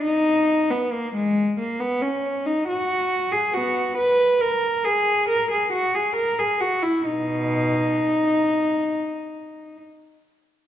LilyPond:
\new Staff \with { instrumentName = "Cello" } { \time 4/4 \key fis \major \tempo 4 = 68 << { dis'8. b16 ais16 gis8 ais16 b16 cis'8 dis'16 fis'8. gis'16 | \key dis \phrygian fis'8 b'8 ais'8 gis'8 ais'16 gis'16 fis'16 gis'16 ais'16 gis'16 fis'16 e'16 | dis'2. r4 | } \\ { r1 | b8 r2. r8 | b,4. r2 r8 | } >> }